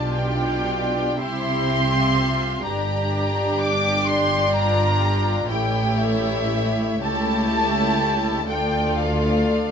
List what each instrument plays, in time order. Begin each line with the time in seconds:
Already playing: double bass section B1, cello section B2, viola section D4 F4, violin section G4 D5 A5
0.14 violin section G5
1.18 double bass section C2, cello section C3, viola section C4 E4, violin section G4 E5 C6
1.93 viola section F4
2.63 double bass section G1, cello section G2, viola section D4 G4, violin section G4 D5 A#5
3.58 violin section D6
4.05 violin section C6
4.51 viola section F4, violin section A#5
5.48 double bass section A1, cello section A2, viola section A3 E4, violin section G4 C#5 G5
5.99 violin section E5
7.01 cello section C#2, double bass section C#2, viola section A3 E4, violin section G4 C#5 A5
8.48 cello section D2, double bass section D2, viola section A3 F4, violin section A4 D5 G5
8.97 violin section F5